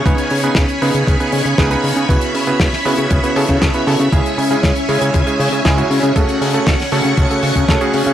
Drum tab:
HH |xxoxxxoxxxoxxxox|xxoxxooxxxoxxxox|xxoxxxoxxxoxxxox|xxoxxooxxxoxxxox|
SD |----o-------o---|----oo------o---|----o-------o---|----oo------o---|
BD |o---o---o---o---|o---o---o--oo---|o---o---o---o---|o---o---o--oo---|